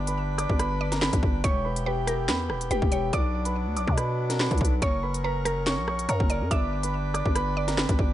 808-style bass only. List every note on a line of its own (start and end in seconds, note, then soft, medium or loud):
0.00 0.47 G1 loud
0.49 1.10 G1 loud
1.13 1.22 G1 loud
1.23 1.43 G1 loud
1.44 2.30 E1 loud
2.28 2.51 E2 loud
2.50 2.70 E1 loud
2.71 2.81 E1 loud
2.82 3.12 E1 loud
3.13 3.68 B1 loud
3.66 3.78 D2 loud
3.76 3.87 B1 loud
3.87 4.48 B2 loud
4.51 4.60 B1 loud
4.61 4.81 B1 loud
4.82 5.79 F#1 loud
5.78 6.07 A#1 loud
6.09 6.20 F#2 loud
6.20 6.43 F#1 loud
6.41 6.50 F#2 loud
6.51 7.23 G1 loud
7.26 7.86 G1 loud
7.89 7.98 G1 loud
7.99 8.13 G1 loud